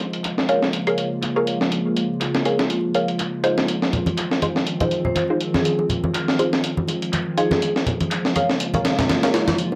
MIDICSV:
0, 0, Header, 1, 5, 480
1, 0, Start_track
1, 0, Tempo, 491803
1, 1677, Time_signature, 4, 2, 24, 8
1, 9519, End_track
2, 0, Start_track
2, 0, Title_t, "Synth stab"
2, 0, Program_c, 0, 62
2, 476, Note_on_c, 0, 68, 69
2, 477, Note_on_c, 0, 70, 65
2, 477, Note_on_c, 0, 73, 69
2, 477, Note_on_c, 0, 77, 81
2, 627, Note_off_c, 0, 68, 0
2, 628, Note_off_c, 0, 70, 0
2, 628, Note_off_c, 0, 73, 0
2, 628, Note_off_c, 0, 77, 0
2, 850, Note_on_c, 0, 73, 75
2, 851, Note_on_c, 0, 70, 76
2, 851, Note_on_c, 0, 77, 94
2, 852, Note_on_c, 0, 68, 79
2, 1070, Note_off_c, 0, 70, 0
2, 1070, Note_off_c, 0, 73, 0
2, 1070, Note_off_c, 0, 77, 0
2, 1071, Note_off_c, 0, 68, 0
2, 1329, Note_on_c, 0, 70, 74
2, 1330, Note_on_c, 0, 68, 79
2, 1330, Note_on_c, 0, 73, 71
2, 1330, Note_on_c, 0, 77, 85
2, 1549, Note_off_c, 0, 70, 0
2, 1549, Note_off_c, 0, 77, 0
2, 1550, Note_off_c, 0, 68, 0
2, 1550, Note_off_c, 0, 73, 0
2, 2395, Note_on_c, 0, 73, 72
2, 2396, Note_on_c, 0, 70, 70
2, 2396, Note_on_c, 0, 77, 81
2, 2397, Note_on_c, 0, 68, 74
2, 2547, Note_off_c, 0, 70, 0
2, 2547, Note_off_c, 0, 73, 0
2, 2547, Note_off_c, 0, 77, 0
2, 2548, Note_off_c, 0, 68, 0
2, 2876, Note_on_c, 0, 70, 82
2, 2876, Note_on_c, 0, 73, 78
2, 2877, Note_on_c, 0, 68, 89
2, 2877, Note_on_c, 0, 77, 100
2, 3027, Note_off_c, 0, 70, 0
2, 3027, Note_off_c, 0, 73, 0
2, 3028, Note_off_c, 0, 68, 0
2, 3028, Note_off_c, 0, 77, 0
2, 3353, Note_on_c, 0, 72, 109
2, 3354, Note_on_c, 0, 63, 99
2, 3354, Note_on_c, 0, 68, 91
2, 3355, Note_on_c, 0, 65, 91
2, 4290, Note_off_c, 0, 63, 0
2, 4290, Note_off_c, 0, 65, 0
2, 4290, Note_off_c, 0, 68, 0
2, 4290, Note_off_c, 0, 72, 0
2, 4317, Note_on_c, 0, 65, 70
2, 4318, Note_on_c, 0, 63, 75
2, 4318, Note_on_c, 0, 68, 64
2, 4319, Note_on_c, 0, 72, 83
2, 4468, Note_off_c, 0, 65, 0
2, 4469, Note_off_c, 0, 63, 0
2, 4469, Note_off_c, 0, 68, 0
2, 4469, Note_off_c, 0, 72, 0
2, 4692, Note_on_c, 0, 68, 76
2, 4693, Note_on_c, 0, 63, 86
2, 4693, Note_on_c, 0, 65, 77
2, 4693, Note_on_c, 0, 72, 92
2, 4911, Note_off_c, 0, 63, 0
2, 4911, Note_off_c, 0, 65, 0
2, 4911, Note_off_c, 0, 68, 0
2, 4911, Note_off_c, 0, 72, 0
2, 5174, Note_on_c, 0, 68, 72
2, 5175, Note_on_c, 0, 63, 77
2, 5175, Note_on_c, 0, 65, 72
2, 5175, Note_on_c, 0, 72, 88
2, 5392, Note_off_c, 0, 63, 0
2, 5392, Note_off_c, 0, 65, 0
2, 5392, Note_off_c, 0, 68, 0
2, 5392, Note_off_c, 0, 72, 0
2, 6239, Note_on_c, 0, 63, 76
2, 6239, Note_on_c, 0, 65, 68
2, 6239, Note_on_c, 0, 68, 71
2, 6239, Note_on_c, 0, 72, 89
2, 6389, Note_off_c, 0, 63, 0
2, 6389, Note_off_c, 0, 65, 0
2, 6389, Note_off_c, 0, 68, 0
2, 6389, Note_off_c, 0, 72, 0
2, 7197, Note_on_c, 0, 63, 86
2, 7198, Note_on_c, 0, 72, 95
2, 7199, Note_on_c, 0, 65, 80
2, 7199, Note_on_c, 0, 68, 80
2, 7420, Note_off_c, 0, 63, 0
2, 7421, Note_off_c, 0, 65, 0
2, 7421, Note_off_c, 0, 68, 0
2, 7421, Note_off_c, 0, 72, 0
2, 8158, Note_on_c, 0, 73, 65
2, 8158, Note_on_c, 0, 77, 84
2, 8159, Note_on_c, 0, 68, 73
2, 8159, Note_on_c, 0, 70, 70
2, 8308, Note_off_c, 0, 73, 0
2, 8308, Note_off_c, 0, 77, 0
2, 8309, Note_off_c, 0, 68, 0
2, 8309, Note_off_c, 0, 70, 0
2, 8534, Note_on_c, 0, 68, 81
2, 8535, Note_on_c, 0, 70, 79
2, 8535, Note_on_c, 0, 73, 78
2, 8535, Note_on_c, 0, 77, 95
2, 8752, Note_off_c, 0, 68, 0
2, 8752, Note_off_c, 0, 70, 0
2, 8752, Note_off_c, 0, 73, 0
2, 8752, Note_off_c, 0, 77, 0
2, 9013, Note_on_c, 0, 68, 77
2, 9013, Note_on_c, 0, 70, 73
2, 9013, Note_on_c, 0, 73, 71
2, 9014, Note_on_c, 0, 77, 87
2, 9231, Note_off_c, 0, 68, 0
2, 9231, Note_off_c, 0, 70, 0
2, 9231, Note_off_c, 0, 73, 0
2, 9231, Note_off_c, 0, 77, 0
2, 9519, End_track
3, 0, Start_track
3, 0, Title_t, "Vibraphone"
3, 0, Program_c, 1, 11
3, 4929, Note_on_c, 1, 72, 80
3, 4997, Note_off_c, 1, 72, 0
3, 5036, Note_on_c, 1, 72, 66
3, 5123, Note_off_c, 1, 72, 0
3, 5413, Note_on_c, 1, 68, 84
3, 5479, Note_off_c, 1, 68, 0
3, 5515, Note_on_c, 1, 68, 68
3, 5603, Note_off_c, 1, 68, 0
3, 5998, Note_on_c, 1, 65, 85
3, 6084, Note_off_c, 1, 65, 0
3, 6132, Note_on_c, 1, 65, 67
3, 6199, Note_off_c, 1, 65, 0
3, 7198, Note_on_c, 1, 68, 86
3, 7491, Note_off_c, 1, 68, 0
3, 9519, End_track
4, 0, Start_track
4, 0, Title_t, "Ambient pad"
4, 0, Program_c, 2, 92
4, 0, Note_on_c, 2, 49, 75
4, 0, Note_on_c, 2, 53, 70
4, 0, Note_on_c, 2, 56, 68
4, 0, Note_on_c, 2, 58, 67
4, 0, Note_on_c, 2, 65, 83
4, 3559, Note_off_c, 2, 49, 0
4, 3559, Note_off_c, 2, 58, 0
4, 3597, Note_on_c, 2, 60, 73
4, 3598, Note_on_c, 2, 51, 78
4, 7398, Note_off_c, 2, 56, 0
4, 7398, Note_off_c, 2, 60, 0
4, 7398, Note_off_c, 2, 65, 0
4, 7399, Note_off_c, 2, 51, 0
4, 7440, Note_on_c, 2, 58, 70
4, 7440, Note_on_c, 2, 65, 86
4, 7442, Note_on_c, 2, 49, 78
4, 7442, Note_on_c, 2, 56, 73
4, 9519, Note_off_c, 2, 49, 0
4, 9519, Note_off_c, 2, 53, 0
4, 9519, Note_off_c, 2, 56, 0
4, 9519, Note_off_c, 2, 58, 0
4, 9519, Note_off_c, 2, 65, 0
4, 9519, End_track
5, 0, Start_track
5, 0, Title_t, "Drums"
5, 0, Note_on_c, 9, 42, 56
5, 93, Note_off_c, 9, 42, 0
5, 131, Note_on_c, 9, 42, 39
5, 228, Note_off_c, 9, 42, 0
5, 235, Note_on_c, 9, 39, 95
5, 236, Note_on_c, 9, 42, 84
5, 333, Note_off_c, 9, 39, 0
5, 334, Note_off_c, 9, 42, 0
5, 372, Note_on_c, 9, 38, 35
5, 469, Note_off_c, 9, 38, 0
5, 476, Note_on_c, 9, 42, 64
5, 574, Note_off_c, 9, 42, 0
5, 610, Note_on_c, 9, 38, 35
5, 708, Note_off_c, 9, 38, 0
5, 714, Note_on_c, 9, 42, 82
5, 812, Note_off_c, 9, 42, 0
5, 849, Note_on_c, 9, 42, 39
5, 947, Note_off_c, 9, 42, 0
5, 955, Note_on_c, 9, 42, 64
5, 1052, Note_off_c, 9, 42, 0
5, 1195, Note_on_c, 9, 39, 103
5, 1196, Note_on_c, 9, 42, 78
5, 1292, Note_off_c, 9, 39, 0
5, 1294, Note_off_c, 9, 42, 0
5, 1436, Note_on_c, 9, 42, 66
5, 1533, Note_off_c, 9, 42, 0
5, 1571, Note_on_c, 9, 38, 40
5, 1669, Note_off_c, 9, 38, 0
5, 1676, Note_on_c, 9, 42, 83
5, 1774, Note_off_c, 9, 42, 0
5, 1918, Note_on_c, 9, 42, 63
5, 2015, Note_off_c, 9, 42, 0
5, 2155, Note_on_c, 9, 39, 99
5, 2155, Note_on_c, 9, 42, 82
5, 2252, Note_off_c, 9, 39, 0
5, 2253, Note_off_c, 9, 42, 0
5, 2290, Note_on_c, 9, 38, 42
5, 2387, Note_off_c, 9, 38, 0
5, 2395, Note_on_c, 9, 42, 63
5, 2492, Note_off_c, 9, 42, 0
5, 2530, Note_on_c, 9, 38, 47
5, 2628, Note_off_c, 9, 38, 0
5, 2635, Note_on_c, 9, 42, 84
5, 2733, Note_off_c, 9, 42, 0
5, 2874, Note_on_c, 9, 42, 61
5, 2972, Note_off_c, 9, 42, 0
5, 3009, Note_on_c, 9, 42, 40
5, 3107, Note_off_c, 9, 42, 0
5, 3115, Note_on_c, 9, 42, 76
5, 3117, Note_on_c, 9, 39, 98
5, 3212, Note_off_c, 9, 42, 0
5, 3214, Note_off_c, 9, 39, 0
5, 3355, Note_on_c, 9, 42, 65
5, 3452, Note_off_c, 9, 42, 0
5, 3491, Note_on_c, 9, 38, 49
5, 3588, Note_off_c, 9, 38, 0
5, 3595, Note_on_c, 9, 42, 81
5, 3693, Note_off_c, 9, 42, 0
5, 3731, Note_on_c, 9, 38, 35
5, 3829, Note_off_c, 9, 38, 0
5, 3836, Note_on_c, 9, 42, 57
5, 3836, Note_on_c, 9, 64, 70
5, 3934, Note_off_c, 9, 42, 0
5, 3934, Note_off_c, 9, 64, 0
5, 3965, Note_on_c, 9, 63, 77
5, 3971, Note_on_c, 9, 42, 39
5, 4062, Note_off_c, 9, 63, 0
5, 4069, Note_off_c, 9, 42, 0
5, 4075, Note_on_c, 9, 42, 80
5, 4077, Note_on_c, 9, 39, 98
5, 4173, Note_off_c, 9, 42, 0
5, 4175, Note_off_c, 9, 39, 0
5, 4211, Note_on_c, 9, 38, 34
5, 4308, Note_off_c, 9, 38, 0
5, 4315, Note_on_c, 9, 42, 67
5, 4317, Note_on_c, 9, 63, 65
5, 4413, Note_off_c, 9, 42, 0
5, 4415, Note_off_c, 9, 63, 0
5, 4450, Note_on_c, 9, 38, 35
5, 4548, Note_off_c, 9, 38, 0
5, 4554, Note_on_c, 9, 42, 78
5, 4652, Note_off_c, 9, 42, 0
5, 4689, Note_on_c, 9, 42, 39
5, 4691, Note_on_c, 9, 63, 87
5, 4692, Note_on_c, 9, 64, 74
5, 4695, Note_on_c, 9, 60, 58
5, 4786, Note_off_c, 9, 42, 0
5, 4789, Note_off_c, 9, 63, 0
5, 4790, Note_off_c, 9, 64, 0
5, 4793, Note_off_c, 9, 60, 0
5, 4794, Note_on_c, 9, 42, 66
5, 4892, Note_off_c, 9, 42, 0
5, 4925, Note_on_c, 9, 64, 73
5, 5023, Note_off_c, 9, 64, 0
5, 5033, Note_on_c, 9, 42, 80
5, 5034, Note_on_c, 9, 63, 65
5, 5036, Note_on_c, 9, 39, 100
5, 5130, Note_off_c, 9, 42, 0
5, 5132, Note_off_c, 9, 63, 0
5, 5134, Note_off_c, 9, 39, 0
5, 5275, Note_on_c, 9, 42, 64
5, 5373, Note_off_c, 9, 42, 0
5, 5410, Note_on_c, 9, 38, 39
5, 5412, Note_on_c, 9, 63, 83
5, 5508, Note_off_c, 9, 38, 0
5, 5509, Note_off_c, 9, 63, 0
5, 5516, Note_on_c, 9, 42, 86
5, 5614, Note_off_c, 9, 42, 0
5, 5649, Note_on_c, 9, 60, 54
5, 5747, Note_off_c, 9, 60, 0
5, 5753, Note_on_c, 9, 64, 67
5, 5757, Note_on_c, 9, 42, 61
5, 5850, Note_off_c, 9, 64, 0
5, 5854, Note_off_c, 9, 42, 0
5, 5892, Note_on_c, 9, 63, 87
5, 5990, Note_off_c, 9, 63, 0
5, 5997, Note_on_c, 9, 42, 82
5, 5998, Note_on_c, 9, 39, 92
5, 6094, Note_off_c, 9, 42, 0
5, 6095, Note_off_c, 9, 39, 0
5, 6133, Note_on_c, 9, 38, 42
5, 6230, Note_off_c, 9, 38, 0
5, 6236, Note_on_c, 9, 60, 33
5, 6239, Note_on_c, 9, 42, 64
5, 6334, Note_off_c, 9, 60, 0
5, 6336, Note_off_c, 9, 42, 0
5, 6373, Note_on_c, 9, 38, 44
5, 6471, Note_off_c, 9, 38, 0
5, 6478, Note_on_c, 9, 42, 84
5, 6576, Note_off_c, 9, 42, 0
5, 6611, Note_on_c, 9, 63, 81
5, 6708, Note_off_c, 9, 63, 0
5, 6711, Note_on_c, 9, 60, 44
5, 6719, Note_on_c, 9, 42, 62
5, 6809, Note_off_c, 9, 60, 0
5, 6817, Note_off_c, 9, 42, 0
5, 6854, Note_on_c, 9, 42, 42
5, 6952, Note_off_c, 9, 42, 0
5, 6958, Note_on_c, 9, 39, 92
5, 6958, Note_on_c, 9, 42, 83
5, 6962, Note_on_c, 9, 63, 57
5, 7056, Note_off_c, 9, 39, 0
5, 7056, Note_off_c, 9, 42, 0
5, 7060, Note_off_c, 9, 63, 0
5, 7198, Note_on_c, 9, 42, 69
5, 7296, Note_off_c, 9, 42, 0
5, 7330, Note_on_c, 9, 63, 87
5, 7334, Note_on_c, 9, 38, 49
5, 7427, Note_off_c, 9, 63, 0
5, 7432, Note_off_c, 9, 38, 0
5, 7439, Note_on_c, 9, 42, 87
5, 7536, Note_off_c, 9, 42, 0
5, 7574, Note_on_c, 9, 38, 35
5, 7672, Note_off_c, 9, 38, 0
5, 7676, Note_on_c, 9, 64, 81
5, 7678, Note_on_c, 9, 42, 61
5, 7774, Note_off_c, 9, 64, 0
5, 7775, Note_off_c, 9, 42, 0
5, 7813, Note_on_c, 9, 42, 42
5, 7814, Note_on_c, 9, 63, 71
5, 7911, Note_off_c, 9, 42, 0
5, 7911, Note_off_c, 9, 63, 0
5, 7917, Note_on_c, 9, 39, 94
5, 7917, Note_on_c, 9, 42, 82
5, 8014, Note_off_c, 9, 39, 0
5, 8014, Note_off_c, 9, 42, 0
5, 8052, Note_on_c, 9, 38, 38
5, 8149, Note_off_c, 9, 38, 0
5, 8156, Note_on_c, 9, 42, 67
5, 8160, Note_on_c, 9, 63, 54
5, 8253, Note_off_c, 9, 42, 0
5, 8257, Note_off_c, 9, 63, 0
5, 8291, Note_on_c, 9, 38, 34
5, 8388, Note_off_c, 9, 38, 0
5, 8394, Note_on_c, 9, 42, 88
5, 8492, Note_off_c, 9, 42, 0
5, 8526, Note_on_c, 9, 63, 83
5, 8529, Note_on_c, 9, 64, 68
5, 8531, Note_on_c, 9, 42, 38
5, 8537, Note_on_c, 9, 60, 55
5, 8624, Note_off_c, 9, 63, 0
5, 8626, Note_off_c, 9, 64, 0
5, 8629, Note_off_c, 9, 42, 0
5, 8634, Note_off_c, 9, 60, 0
5, 8635, Note_on_c, 9, 38, 98
5, 8635, Note_on_c, 9, 42, 77
5, 8733, Note_off_c, 9, 38, 0
5, 8733, Note_off_c, 9, 42, 0
5, 8770, Note_on_c, 9, 38, 96
5, 8770, Note_on_c, 9, 42, 76
5, 8772, Note_on_c, 9, 64, 78
5, 8868, Note_off_c, 9, 38, 0
5, 8868, Note_off_c, 9, 42, 0
5, 8869, Note_off_c, 9, 64, 0
5, 8875, Note_on_c, 9, 39, 90
5, 8876, Note_on_c, 9, 38, 94
5, 8876, Note_on_c, 9, 42, 68
5, 8877, Note_on_c, 9, 63, 62
5, 8973, Note_off_c, 9, 39, 0
5, 8974, Note_off_c, 9, 38, 0
5, 8974, Note_off_c, 9, 42, 0
5, 8975, Note_off_c, 9, 63, 0
5, 9010, Note_on_c, 9, 38, 100
5, 9010, Note_on_c, 9, 42, 75
5, 9108, Note_off_c, 9, 38, 0
5, 9108, Note_off_c, 9, 42, 0
5, 9115, Note_on_c, 9, 38, 100
5, 9115, Note_on_c, 9, 42, 77
5, 9213, Note_off_c, 9, 38, 0
5, 9213, Note_off_c, 9, 42, 0
5, 9249, Note_on_c, 9, 38, 100
5, 9249, Note_on_c, 9, 42, 77
5, 9250, Note_on_c, 9, 63, 85
5, 9347, Note_off_c, 9, 38, 0
5, 9347, Note_off_c, 9, 42, 0
5, 9347, Note_off_c, 9, 63, 0
5, 9354, Note_on_c, 9, 42, 85
5, 9452, Note_off_c, 9, 42, 0
5, 9488, Note_on_c, 9, 60, 59
5, 9519, Note_off_c, 9, 60, 0
5, 9519, End_track
0, 0, End_of_file